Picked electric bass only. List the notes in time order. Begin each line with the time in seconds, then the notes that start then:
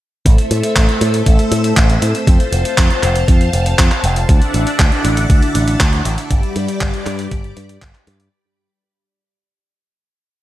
0.26 A1
0.51 A2
0.76 A1
1.01 A2
1.26 A1
1.52 A2
1.77 A1
2.02 A2
2.27 F2
2.52 F1
2.78 F2
3.03 F1
3.28 F2
3.53 F1
3.79 F2
4.04 F1
4.29 D2
4.54 A1
4.79 D2
5.05 A1
5.30 D2
5.55 A1
5.80 D2
6.05 A1
6.31 G1
6.56 G2
6.81 G1
7.06 G2
7.31 G1
7.57 G2
7.82 G1
8.07 G2